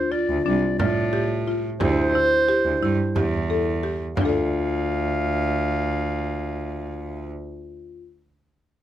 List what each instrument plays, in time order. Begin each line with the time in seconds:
Already playing: vibraphone F4, clarinet C5
0.12 marimba F4, clarinet D5
0.29 cello D2
0.44 cello C2, marimba D4, clarinet D5
0.78 cello A2, marimba F4, clarinet D5, frame drum
1.13 marimba G4
1.47 marimba F4, frame drum
1.79 cello D2, vibraphone E4, marimba G4, clarinet C5, frame drum
2.15 marimba E4
2.49 marimba G4
2.65 cello D2
2.81 cello G2, marimba E4
3.15 cello E2, marimba G4, frame drum
3.50 marimba A4
3.83 marimba G4
4.16 cello D2, marimba D4, vibraphone F4, clarinet F5, frame drum
4.21 marimba F4
4.25 marimba A4 D5